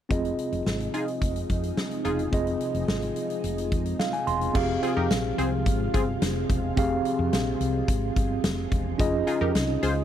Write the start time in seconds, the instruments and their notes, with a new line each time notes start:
0.09 fretless electric bass F1, string machine C3 F3 G#3 D#4, tine electric piano C4 F4 G#4 D#5, kick, closed hi-hat
0.25 closed hi-hat
0.39 closed hi-hat
0.52 fretless electric bass F1, closed hi-hat
0.66 fretless electric bass G#1, snare
0.80 closed hi-hat
0.94 analog polysynth D#4 F4 G#4, closed hi-hat
1.08 closed hi-hat
1.22 fretless electric bass F1, kick, closed hi-hat
1.36 closed hi-hat
1.50 fretless electric bass F2, kick, closed hi-hat
1.63 closed hi-hat
1.77 snare
1.91 closed hi-hat
2.05 fretless electric bass E1, analog polysynth D#4 F4 G#4, closed hi-hat
2.19 closed hi-hat
2.32 fretless electric bass F1, tine electric piano C4 F4 G#4 D#5, kick, closed hi-hat
2.47 closed hi-hat
2.61 closed hi-hat
2.74 fretless electric bass F1, closed hi-hat
2.88 fretless electric bass G#1, snare
3.02 closed hi-hat
3.16 closed hi-hat
3.30 closed hi-hat
3.44 fretless electric bass F1, closed hi-hat
3.58 closed hi-hat
3.72 fretless electric bass F2, kick, closed hi-hat
3.86 closed hi-hat
3.99 tine electric piano F5, snare
4.13 tine electric piano G#5, closed hi-hat
4.27 fretless electric bass E1, tine electric piano C6, closed hi-hat
4.41 closed hi-hat
4.54 fretless electric bass F1, string machine C3 F3 G#3 F4, tine electric piano C4 G4 G#4 F5, kick, crash
4.83 analog polysynth C4 F4 G#4, closed hi-hat
4.97 fretless electric bass F2, analog polysynth D#4 G4 A#4
5.10 fretless electric bass A#1, snare, closed hi-hat
5.38 fretless electric bass C2, analog polysynth C4 G#4 C5, closed hi-hat
5.66 fretless electric bass G#1, kick, closed hi-hat
5.94 fretless electric bass G1, analog polysynth C4 F4 G#4, kick, closed hi-hat
6.22 fretless electric bass F1, snare, closed hi-hat
6.50 fretless electric bass E1, kick, closed hi-hat
6.76 fretless electric bass F1, tine electric piano C4 G4 G#4 F5, kick, closed hi-hat
7.05 closed hi-hat
7.19 fretless electric bass F2
7.33 fretless electric bass A#1, snare, closed hi-hat
7.60 fretless electric bass C2, closed hi-hat
7.88 fretless electric bass G#1, kick, closed hi-hat
8.16 fretless electric bass G1, kick, closed hi-hat
8.44 fretless electric bass F1, snare, closed hi-hat
8.72 fretless electric bass E1, kick, closed hi-hat
8.98 fretless electric bass F1, string machine C#3 F3 G#3 D#4, tine electric piano C#4 F4 G#4 D#5, kick, closed hi-hat
9.27 analog polysynth D#4 F4 G#4, closed hi-hat
9.41 fretless electric bass F2, analog polysynth D#4 G4 A#4
9.55 fretless electric bass C2, snare, closed hi-hat
9.83 fretless electric bass C#2, analog polysynth F4 G#4 C5, closed hi-hat